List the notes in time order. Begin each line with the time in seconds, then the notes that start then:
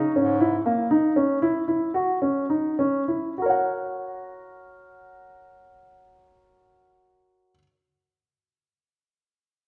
Already playing: D#4
0.16 G#2 C#4
0.41 E4
0.66 A#3
0.91 D#4
1.16 C#4
1.42 E4
1.68 E4
1.94 F#4
2.22 C#4
2.50 D#4
2.79 C#4
3.08 E4
3.38 F#4 A#4
3.46 C#5 F#5